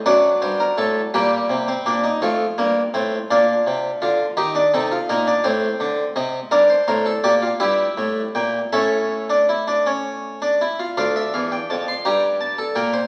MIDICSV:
0, 0, Header, 1, 2, 480
1, 0, Start_track
1, 0, Tempo, 717703
1, 37, Time_signature, 6, 3, 24, 8
1, 4837, Tempo, 748130
1, 7237, Tempo, 716846
1, 8641, End_track
2, 0, Start_track
2, 0, Title_t, "Harpsichord"
2, 0, Program_c, 0, 6
2, 40, Note_on_c, 0, 54, 78
2, 40, Note_on_c, 0, 62, 76
2, 40, Note_on_c, 0, 74, 97
2, 41, Note_on_c, 0, 42, 80
2, 186, Note_off_c, 0, 74, 0
2, 187, Note_off_c, 0, 42, 0
2, 280, Note_on_c, 0, 43, 71
2, 281, Note_on_c, 0, 72, 85
2, 393, Note_off_c, 0, 72, 0
2, 400, Note_on_c, 0, 70, 80
2, 426, Note_off_c, 0, 43, 0
2, 513, Note_off_c, 0, 70, 0
2, 519, Note_on_c, 0, 45, 68
2, 521, Note_on_c, 0, 69, 86
2, 666, Note_off_c, 0, 45, 0
2, 668, Note_off_c, 0, 69, 0
2, 734, Note_off_c, 0, 54, 0
2, 734, Note_off_c, 0, 62, 0
2, 763, Note_on_c, 0, 55, 70
2, 763, Note_on_c, 0, 67, 80
2, 764, Note_on_c, 0, 58, 65
2, 765, Note_on_c, 0, 46, 78
2, 911, Note_off_c, 0, 46, 0
2, 1000, Note_on_c, 0, 48, 67
2, 1110, Note_off_c, 0, 58, 0
2, 1124, Note_on_c, 0, 60, 66
2, 1148, Note_off_c, 0, 48, 0
2, 1237, Note_off_c, 0, 60, 0
2, 1244, Note_on_c, 0, 62, 60
2, 1245, Note_on_c, 0, 46, 60
2, 1357, Note_off_c, 0, 62, 0
2, 1363, Note_on_c, 0, 63, 64
2, 1392, Note_off_c, 0, 46, 0
2, 1461, Note_off_c, 0, 55, 0
2, 1461, Note_off_c, 0, 67, 0
2, 1478, Note_off_c, 0, 63, 0
2, 1484, Note_on_c, 0, 41, 60
2, 1486, Note_on_c, 0, 57, 72
2, 1486, Note_on_c, 0, 65, 68
2, 1633, Note_off_c, 0, 41, 0
2, 1634, Note_off_c, 0, 57, 0
2, 1726, Note_on_c, 0, 43, 56
2, 1727, Note_on_c, 0, 58, 66
2, 1875, Note_off_c, 0, 43, 0
2, 1875, Note_off_c, 0, 58, 0
2, 1966, Note_on_c, 0, 45, 57
2, 1967, Note_on_c, 0, 60, 63
2, 2115, Note_off_c, 0, 45, 0
2, 2115, Note_off_c, 0, 60, 0
2, 2187, Note_off_c, 0, 65, 0
2, 2211, Note_on_c, 0, 46, 61
2, 2211, Note_on_c, 0, 62, 73
2, 2212, Note_on_c, 0, 65, 64
2, 2358, Note_off_c, 0, 46, 0
2, 2452, Note_on_c, 0, 48, 61
2, 2598, Note_off_c, 0, 48, 0
2, 2674, Note_off_c, 0, 62, 0
2, 2680, Note_off_c, 0, 65, 0
2, 2688, Note_on_c, 0, 65, 63
2, 2689, Note_on_c, 0, 50, 52
2, 2835, Note_off_c, 0, 65, 0
2, 2836, Note_off_c, 0, 50, 0
2, 2922, Note_on_c, 0, 51, 72
2, 2924, Note_on_c, 0, 63, 69
2, 2924, Note_on_c, 0, 67, 78
2, 3040, Note_off_c, 0, 63, 0
2, 3044, Note_on_c, 0, 62, 57
2, 3071, Note_off_c, 0, 51, 0
2, 3072, Note_off_c, 0, 67, 0
2, 3160, Note_off_c, 0, 62, 0
2, 3169, Note_on_c, 0, 48, 54
2, 3170, Note_on_c, 0, 63, 55
2, 3170, Note_on_c, 0, 69, 71
2, 3282, Note_off_c, 0, 63, 0
2, 3287, Note_on_c, 0, 65, 60
2, 3315, Note_off_c, 0, 48, 0
2, 3315, Note_off_c, 0, 69, 0
2, 3401, Note_off_c, 0, 65, 0
2, 3407, Note_on_c, 0, 46, 62
2, 3407, Note_on_c, 0, 63, 60
2, 3407, Note_on_c, 0, 70, 76
2, 3520, Note_off_c, 0, 63, 0
2, 3526, Note_on_c, 0, 62, 56
2, 3553, Note_off_c, 0, 46, 0
2, 3553, Note_off_c, 0, 70, 0
2, 3639, Note_off_c, 0, 62, 0
2, 3639, Note_on_c, 0, 72, 75
2, 3640, Note_on_c, 0, 45, 65
2, 3640, Note_on_c, 0, 60, 67
2, 3788, Note_off_c, 0, 45, 0
2, 3881, Note_on_c, 0, 50, 67
2, 4028, Note_off_c, 0, 50, 0
2, 4102, Note_off_c, 0, 72, 0
2, 4119, Note_on_c, 0, 48, 67
2, 4121, Note_on_c, 0, 75, 68
2, 4267, Note_off_c, 0, 48, 0
2, 4268, Note_off_c, 0, 75, 0
2, 4335, Note_off_c, 0, 60, 0
2, 4356, Note_on_c, 0, 70, 84
2, 4357, Note_on_c, 0, 43, 69
2, 4357, Note_on_c, 0, 62, 79
2, 4473, Note_off_c, 0, 70, 0
2, 4479, Note_on_c, 0, 72, 68
2, 4506, Note_off_c, 0, 43, 0
2, 4592, Note_off_c, 0, 72, 0
2, 4600, Note_on_c, 0, 70, 72
2, 4600, Note_on_c, 0, 72, 78
2, 4601, Note_on_c, 0, 45, 68
2, 4715, Note_off_c, 0, 70, 0
2, 4720, Note_on_c, 0, 69, 69
2, 4749, Note_off_c, 0, 45, 0
2, 4749, Note_off_c, 0, 72, 0
2, 4836, Note_off_c, 0, 69, 0
2, 4841, Note_on_c, 0, 46, 66
2, 4841, Note_on_c, 0, 67, 66
2, 4842, Note_on_c, 0, 74, 74
2, 4952, Note_off_c, 0, 67, 0
2, 4958, Note_on_c, 0, 65, 65
2, 4985, Note_off_c, 0, 46, 0
2, 4986, Note_off_c, 0, 74, 0
2, 5051, Note_off_c, 0, 62, 0
2, 5070, Note_off_c, 0, 65, 0
2, 5073, Note_on_c, 0, 64, 71
2, 5073, Note_on_c, 0, 67, 72
2, 5074, Note_on_c, 0, 76, 76
2, 5075, Note_on_c, 0, 43, 69
2, 5221, Note_off_c, 0, 43, 0
2, 5314, Note_on_c, 0, 45, 69
2, 5461, Note_off_c, 0, 45, 0
2, 5537, Note_off_c, 0, 76, 0
2, 5554, Note_on_c, 0, 46, 54
2, 5554, Note_on_c, 0, 79, 67
2, 5703, Note_off_c, 0, 46, 0
2, 5703, Note_off_c, 0, 79, 0
2, 5771, Note_off_c, 0, 64, 0
2, 5771, Note_off_c, 0, 67, 0
2, 5795, Note_on_c, 0, 76, 68
2, 5796, Note_on_c, 0, 45, 66
2, 5796, Note_on_c, 0, 61, 66
2, 5796, Note_on_c, 0, 69, 66
2, 6148, Note_off_c, 0, 61, 0
2, 6161, Note_on_c, 0, 62, 51
2, 6276, Note_off_c, 0, 62, 0
2, 6286, Note_on_c, 0, 64, 59
2, 6399, Note_off_c, 0, 64, 0
2, 6405, Note_on_c, 0, 62, 53
2, 6518, Note_off_c, 0, 62, 0
2, 6525, Note_on_c, 0, 61, 59
2, 6871, Note_off_c, 0, 61, 0
2, 6882, Note_on_c, 0, 62, 53
2, 6975, Note_off_c, 0, 45, 0
2, 6975, Note_off_c, 0, 69, 0
2, 6975, Note_off_c, 0, 76, 0
2, 6997, Note_off_c, 0, 62, 0
2, 7006, Note_on_c, 0, 64, 45
2, 7119, Note_off_c, 0, 64, 0
2, 7122, Note_on_c, 0, 65, 51
2, 7230, Note_off_c, 0, 65, 0
2, 7238, Note_on_c, 0, 38, 69
2, 7238, Note_on_c, 0, 65, 62
2, 7239, Note_on_c, 0, 62, 63
2, 7239, Note_on_c, 0, 77, 60
2, 7357, Note_off_c, 0, 77, 0
2, 7362, Note_on_c, 0, 76, 54
2, 7389, Note_off_c, 0, 38, 0
2, 7479, Note_off_c, 0, 76, 0
2, 7482, Note_on_c, 0, 77, 57
2, 7483, Note_on_c, 0, 40, 63
2, 7600, Note_off_c, 0, 77, 0
2, 7604, Note_on_c, 0, 79, 52
2, 7633, Note_off_c, 0, 40, 0
2, 7720, Note_off_c, 0, 79, 0
2, 7725, Note_on_c, 0, 41, 63
2, 7727, Note_on_c, 0, 81, 58
2, 7841, Note_off_c, 0, 81, 0
2, 7846, Note_on_c, 0, 84, 60
2, 7873, Note_off_c, 0, 41, 0
2, 7941, Note_off_c, 0, 65, 0
2, 7959, Note_on_c, 0, 82, 64
2, 7960, Note_off_c, 0, 84, 0
2, 7961, Note_on_c, 0, 43, 73
2, 7961, Note_on_c, 0, 67, 58
2, 8108, Note_off_c, 0, 82, 0
2, 8198, Note_on_c, 0, 81, 62
2, 8308, Note_off_c, 0, 67, 0
2, 8316, Note_on_c, 0, 69, 59
2, 8346, Note_off_c, 0, 81, 0
2, 8423, Note_off_c, 0, 43, 0
2, 8430, Note_on_c, 0, 46, 59
2, 8431, Note_on_c, 0, 70, 57
2, 8432, Note_on_c, 0, 79, 53
2, 8433, Note_off_c, 0, 69, 0
2, 8550, Note_off_c, 0, 70, 0
2, 8551, Note_on_c, 0, 72, 63
2, 8581, Note_off_c, 0, 46, 0
2, 8582, Note_off_c, 0, 79, 0
2, 8641, Note_off_c, 0, 62, 0
2, 8641, Note_off_c, 0, 72, 0
2, 8641, End_track
0, 0, End_of_file